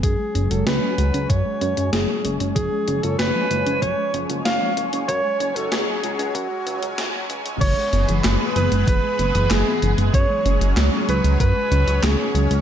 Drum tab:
CC |----------------|----------------|----------------|x---------------|
HH |x-xxx-xxx-xxx-xx|x-xxx-xxx-xxx-xx|x-xxx-xxx-xxx-xx|x-xxx-xxx-xxx-xx|
CP |----------------|----------------|----------------|----x-------x---|
SD |----o-------o---|----o-------o---|----o-------o---|----o-------o---|
BD |o-------o-------|o-------o-------|o-------o-------|o-------o-------|

CC |----------------|
HH |x-xxx-xxx-xxx-xx|
CP |----x-------x---|
SD |----o-------o---|
BD |o-------o-------|